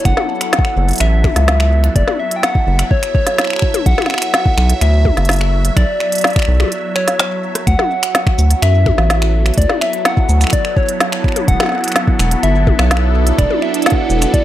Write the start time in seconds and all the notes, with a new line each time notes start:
Already playing: B3 E4 A4
0.05 F#1 F#3 F#5, finger snap, kick, closed hi-hat
0.17 snare, high tom
0.41 finger snap, closed hi-hat
0.46 E5
0.53 snare, closed hi-hat
0.59 kick
0.65 finger snap
0.77 F#1
0.89 closed hi-hat
0.91 closed hi-hat
0.93 closed hi-hat
0.96 closed hi-hat
0.98 finger snap, closed hi-hat
1.00 A1 E5, closed hi-hat
1.24 finger snap, kick, high tom
1.36 C#2, snare, closed hi-hat
1.48 snare, closed hi-hat
1.60 finger snap
1.84 finger snap, closed hi-hat
1.96 F#1 D5, kick, closed hi-hat
2.08 snare, high tom
2.20 E5
2.31 closed hi-hat
2.36 G5
2.43 F#5, finger snap, snare, closed hi-hat
2.55 kick
2.67 F#1
2.79 finger snap, closed hi-hat
2.91 C#5, kick
3.03 finger snap, closed hi-hat
3.15 C#5, kick
3.27 snare, closed hi-hat
3.38 finger snap, snare, closed hi-hat
3.41 finger snap
3.44 finger snap
3.47 finger snap
3.50 finger snap
3.53 finger snap
3.56 finger snap
3.59 finger snap, kick
3.62 finger snap
3.74 closed hi-hat, high tom
3.86 B1 F#5, kick, closed hi-hat
3.98 finger snap, snare, high tom
4.02 finger snap
4.06 finger snap, snare
4.10 finger snap
4.14 finger snap, snare
4.18 finger snap
4.22 finger snap, closed hi-hat
4.34 snare, closed hi-hat
4.46 kick
4.58 B1, finger snap
4.69 closed hi-hat
4.81 D2 E5, finger snap, closed hi-hat
5.05 kick, high tom
5.17 F#1, snare, closed hi-hat
5.25 snare, closed hi-hat
5.29 closed hi-hat
5.31 closed hi-hat
5.33 closed hi-hat
5.41 finger snap
5.65 closed hi-hat
5.77 B1 D5, finger snap, kick, closed hi-hat
6.00 finger snap
6.12 closed hi-hat
6.15 closed hi-hat
6.18 closed hi-hat
6.21 snare, closed hi-hat
6.27 closed hi-hat
6.30 closed hi-hat
6.33 finger snap, kick, closed hi-hat
6.39 finger snap
6.42 finger snap
6.45 B1, finger snap
6.60 finger snap, high tom
6.64 high tom
6.68 closed hi-hat, high tom
6.96 C#5, finger snap
7.08 snare, closed hi-hat
7.19 finger snap, snare, closed hi-hat
7.55 cross-stick, closed hi-hat
7.67 D2 F#5, finger snap, kick, closed hi-hat
7.79 snare, high tom
8.00 B3, finger snap, closed hi-hat
8.15 snare, closed hi-hat
8.27 finger snap, kick
8.35 D2 E4, shaker
8.50 closed hi-hat
8.62 F#2 E5, finger snap, closed hi-hat
8.71 A4
8.86 finger snap, kick, high tom
8.98 A1, snare
9.10 snare, closed hi-hat
9.22 finger snap
9.46 finger snap, closed hi-hat
9.54 D2, kick, closed hi-hat
9.58 D5, closed hi-hat
9.62 closed hi-hat
9.69 snare, high tom
9.81 E5, finger snap
9.93 closed hi-hat
10.05 F#5, finger snap, snare, closed hi-hat
10.17 kick
10.29 D2, shaker
10.41 finger snap, shaker
10.44 finger snap
10.47 finger snap
10.50 D5, finger snap, kick, closed hi-hat
10.65 finger snap
10.77 C#5, kick
10.89 closed hi-hat
11.00 snare, closed hi-hat
11.12 finger snap
11.24 finger snap, kick
11.28 finger snap
11.32 finger snap, closed hi-hat, high tom
11.48 E1 F#5, kick, closed hi-hat
11.60 finger snap, snare, high tom
11.63 snare
11.66 snare
11.69 snare
11.72 snare
11.75 snare
11.78 snare
11.81 finger snap, snare, closed hi-hat
11.88 finger snap, closed hi-hat
11.92 finger snap, snare, closed hi-hat
11.96 closed hi-hat
12.08 kick
12.19 E1, finger snap, shaker
12.31 closed hi-hat
12.43 G1 E5, finger snap, closed hi-hat
12.67 kick, high tom
12.79 B1, finger snap, snare
12.91 D4, snare, closed hi-hat
12.97 finger snap
13.27 closed hi-hat
13.38 E1 D5, finger snap, kick, closed hi-hat
13.50 high tom
13.62 E5, finger snap
13.74 closed hi-hat
13.82 snare, closed hi-hat
13.86 F#5, closed hi-hat
13.90 kick, closed hi-hat
14.10 E1, shaker
14.22 finger snap, closed hi-hat, shaker
14.34 D5, kick, closed hi-hat